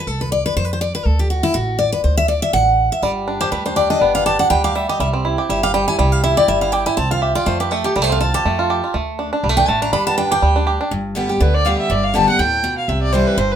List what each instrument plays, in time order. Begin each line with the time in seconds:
0.07 upright bass C2, steel-string acoustic guitar A4
0.21 steel-string acoustic guitar B4
0.32 steel-string acoustic guitar D5
0.46 steel-string acoustic guitar B4
0.56 upright bass F2, steel-string acoustic guitar C5
0.65 steel-string acoustic guitar B4
0.73 steel-string acoustic guitar C5
0.81 steel-string acoustic guitar D5
0.95 steel-string acoustic guitar B4
1.05 upright bass D2, steel-string acoustic guitar A4
1.19 steel-string acoustic guitar G4
1.30 steel-string acoustic guitar F#4
1.43 steel-string acoustic guitar E4
1.54 upright bass A1, steel-string acoustic guitar F#4
1.79 steel-string acoustic guitar D5
1.92 steel-string acoustic guitar B4
2.04 upright bass D2, steel-string acoustic guitar C5
2.17 steel-string acoustic guitar E5
2.28 steel-string acoustic guitar D5
2.42 steel-string acoustic guitar E5
2.53 upright bass A1, steel-string acoustic guitar F#5
2.92 steel-string acoustic guitar E5
3.02 upright bass G1, five-string banjo G3, steel-string acoustic guitar D5
3.28 five-string banjo D4
3.41 five-string banjo G4, steel-string acoustic guitar C5
3.52 upright bass D2, five-string banjo G3, steel-string acoustic guitar B4
3.66 five-string banjo D4, steel-string acoustic guitar C5
3.76 five-string banjo G4, steel-string acoustic guitar D5
3.90 five-string banjo D4, steel-string acoustic guitar D#5
4.01 upright bass G1, five-string banjo B3, steel-string acoustic guitar D5
4.15 five-string banjo D4, steel-string acoustic guitar F5
4.26 five-string banjo G4, steel-string acoustic guitar A5
4.39 five-string banjo D4, steel-string acoustic guitar F#5
4.50 upright bass D2, five-string banjo G3, steel-string acoustic guitar G5
4.64 five-string banjo G4, steel-string acoustic guitar F5
4.75 five-string banjo G3, steel-string acoustic guitar E5
4.89 five-string banjo G4, steel-string acoustic guitar D#5
5.00 upright bass C2, five-string banjo G3, steel-string acoustic guitar E5
5.13 five-string banjo C4
5.25 five-string banjo E4
5.38 five-string banjo G4
5.49 upright bass G1, five-string banjo G3, steel-string acoustic guitar E5
5.63 five-string banjo G4, steel-string acoustic guitar F5
5.74 five-string banjo G3, steel-string acoustic guitar G5
5.88 five-string banjo E4, steel-string acoustic guitar G#5
5.99 upright bass C2, five-string banjo G3, steel-string acoustic guitar G5
6.12 steel-string acoustic guitar F5
6.24 five-string banjo E4, steel-string acoustic guitar E5
6.37 five-string banjo G4, steel-string acoustic guitar D5
6.48 upright bass G1, five-string banjo G3, steel-string acoustic guitar E5
6.61 five-string banjo E4, steel-string acoustic guitar F5
6.72 five-string banjo G4, steel-string acoustic guitar G5
6.86 five-string banjo E4, steel-string acoustic guitar G#5
6.97 upright bass C2, five-string banjo C4, steel-string acoustic guitar A5
7.11 five-string banjo F4, steel-string acoustic guitar F5
7.22 five-string banjo G4, steel-string acoustic guitar E5
7.35 five-string banjo F4, steel-string acoustic guitar D5
7.46 upright bass F2, five-string banjo A3, steel-string acoustic guitar C5
7.60 five-string banjo G4, steel-string acoustic guitar B4
7.71 five-string banjo A3, steel-string acoustic guitar A4
7.84 steel-string acoustic guitar G4, five-string banjo G4
7.96 upright bass C2, five-string banjo G3, steel-string acoustic guitar A4
8.02 five-string banjo A3, steel-string acoustic guitar C5
8.10 five-string banjo C4, steel-string acoustic guitar F5
8.21 five-string banjo F4, steel-string acoustic guitar A5
8.34 five-string banjo G4, steel-string acoustic guitar A5
8.45 upright bass F2, five-string banjo A3
8.59 five-string banjo F4
8.70 five-string banjo G4
8.84 five-string banjo F4
8.94 upright bass D2, five-string banjo A3
9.19 five-string banjo D4
9.33 five-string banjo D4
9.43 upright bass B1, five-string banjo G3
9.49 five-string banjo A3
9.57 five-string banjo D4, steel-string acoustic guitar G5
9.68 upright bass A1, five-string banjo A3, steel-string acoustic guitar A5
9.82 five-string banjo D4, steel-string acoustic guitar A#5
9.93 upright bass G1, five-string banjo G3, steel-string acoustic guitar B5
10.07 five-string banjo B3, steel-string acoustic guitar A5
10.18 five-string banjo D4, steel-string acoustic guitar G5
10.31 five-string banjo G4, steel-string acoustic guitar G5
10.42 upright bass D2, five-string banjo G3
10.56 five-string banjo D4
10.67 five-string banjo G4
10.81 five-string banjo D4
10.91 upright bass G1, steel-string acoustic guitar G2
11.15 steel-string acoustic guitar D3 G3 B3 G4
11.29 steel-string acoustic guitar B3 G4
11.41 upright bass D2, steel-string acoustic guitar D3, fiddle B4
11.54 fiddle D5
11.65 steel-string acoustic guitar D3 G3 B3 G4, fiddle F5
11.79 fiddle E5
11.90 upright bass G1, steel-string acoustic guitar G2, fiddle D5
12.04 fiddle F5
12.14 steel-string acoustic guitar D3 G3 B3 G4, fiddle A5
12.28 steel-string acoustic guitar B3 G4, fiddle F#5
12.39 upright bass D2, steel-string acoustic guitar A2, fiddle G5
12.64 steel-string acoustic guitar B2
12.78 fiddle F5
12.88 upright bass C2, steel-string acoustic guitar C3, fiddle E5
13.02 fiddle D5
13.13 steel-string acoustic guitar E3 G3 C4 E4, fiddle C5
13.26 fiddle B4
13.37 upright bass G1, steel-string acoustic guitar G2, fiddle C5
13.51 fiddle B4